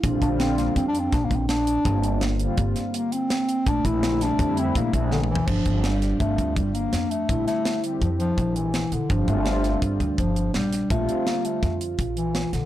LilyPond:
<<
  \new Staff \with { instrumentName = "Vibraphone" } { \time 5/4 \key bes \lydian \tempo 4 = 166 d'1~ d'4 | bes1~ bes4 | a1~ a8 r8 | d'1~ d'4 |
e'1~ e'4 | d'1~ d'4 | f'1~ f'8 r8 | }
  \new Staff \with { instrumentName = "Analog synth pad" } { \time 5/4 \key bes \lydian <d g c' f'>4. r2. r8 | <d g c' f'>8 r4 <d g c' f'>8 r2. | r4 <d g c' e'>8 r8 <d g c' e'>8 r2 r8 | r8 <d g c' f'>8 r4 <d g c' f'>8 r2 r8 |
<d g c' e'>8 r4 <d g c' g'>8 r2. | <d g c' f'>4. r2. r8 | <d g c' f'>8 r1 r8 | }
  \new Staff \with { instrumentName = "Bass clarinet" } { \time 5/4 \key bes \lydian r8 d'8 c'8 bes8 \tuplet 3/2 { c'8 d'8 c'8 d'8 bes8 c'8 } d'4~ | d'4. r4. bes8 c'4. | d'8 e'4 d'4 c'8 bes8 a8 d8 e8 | f4 g4 a4 g8 bes4 a8~ |
a8 a4 r8 f8 f4 e4 d8 | f8 a4. g4 f4 g4 | a4 bes8 a4 r4 e4 d8 | }
  \new Staff \with { instrumentName = "Upright bass" } { \clef bass \time 5/4 \key bes \lydian bes,,8 bes,,4. f,4 bes,,8 bes,,4. | g,,2 g,,8 r2 r8 | bes,,8 bes,,4. f,4 bes,,8 bes,,4. | g,,8 g,,4. g,,8 d,8 g,,4 f,4 |
bes,,8 r4. f,4 bes,,4. bes,,16 r16 | g,,8 g,,4. g,,8 d,8 g,,4 bes,,4 | bes,,8 r4. f,4 bes,,4. bes,,16 r16 | }
  \new DrumStaff \with { instrumentName = "Drums" } \drummode { \time 5/4 <hh bd>8 <hh bd>8 <hh sn>8 <hh sn>8 <hh bd>8 hh8 <hh bd sn>8 <hh bd>8 <hh sn>8 hh8 | <hh bd>8 hh8 <hh sn>8 hh8 <hh bd>8 <hh sn>8 hh8 hh8 <hh sn>8 hh8 | <hh bd>8 <hh bd>8 <hh sn>8 <hh sn>8 <hh bd>8 hh8 <hh bd>8 <hh bd>8 \tuplet 3/2 { sn8 toml8 tomfh8 } | <cymc bd>8 <hh bd>8 <hh sn>8 <hh sn>8 <hh bd>8 <hh bd>8 <hh bd>8 hh8 <hh sn>8 hh8 |
<hh bd>8 <hh sn>8 <hh sn>8 hh8 <hh bd>8 hh8 <hh bd>8 hh8 <hh sn>8 hh8 | <hh bd>8 <hh bd>8 <hh sn>8 <hh sn>8 <hh bd>8 <hh bd>8 <hh bd>8 hh8 <hh sn>8 <hh sn>8 | <hh bd>8 hh8 <hh sn>8 hh8 <hh bd sn>8 hh8 <hh bd>8 hh8 <hh sn>8 <hh sn>8 | }
>>